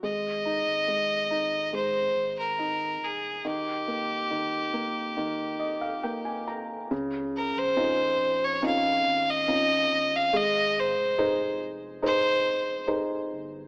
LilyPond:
<<
  \new Staff \with { instrumentName = "Fiddle" } { \time 4/4 \key aes \major \tempo 4 = 70 ees''2 c''8. bes'8. aes'8 | g'2.~ g'8 r8 | r8 bes'16 c''4 des''16 f''8. ees''4 f''16 | ees''8 c''4 r8 c''4 r4 | }
  \new Staff \with { instrumentName = "Felt piano" } { \time 4/4 \key aes \major << { r1 | r2 r8 ees''16 f''16 g''16 aes''16 bes''8 | r1 | r1 | } \\ { aes8 ees'8 aes8 ees'8 aes4 ees'4 | ees8 bes8 ees8 bes8 ees4 bes4 | des4 <des' ees' f'>4 <des' ees' f'>4 <des' ees' f'>4 | aes4 <ees' aes' c''>4 <ees' aes' c''>4 <ees' aes' c''>4 | } >> }
  \new Staff \with { instrumentName = "Sub bass" } { \clef bass \time 4/4 \key aes \major aes,,8. aes,,4.~ aes,,16 aes,,4 f,,8 | ees,,8. ees,,4~ ees,,16 r2 | des,8. bes,,4.~ bes,,16 aes,,4 g,,8 | aes,,8. f,,4.~ f,,16 ees,,4 g,,8 | }
>>